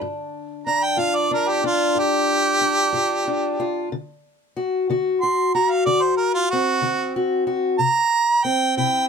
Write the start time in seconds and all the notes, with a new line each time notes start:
Already playing: D3 D4
0.01 G2
0.67 D4 A#5
0.83 G5
0.97 G2 F4 F5
1.16 D5
1.31 D4 A#4
1.49 G4
1.64 D4 F4
1.95 G2 G4
2.61 D4
2.93 G2 F4
3.27 D4
3.60 F4
3.92 D3
4.57 F#4
4.90 D3 F#4
5.21 F#4 C6
5.55 F#4 A#5
5.71 F5
5.86 D3 D5
6.02 C5
6.17 A#4
6.34 F4
6.50 C4 F#4
6.82 D3 C4
7.16 F#4
7.47 F#4
7.79 C3 A#5
8.44 C4 G5
8.77 C3 E4 G5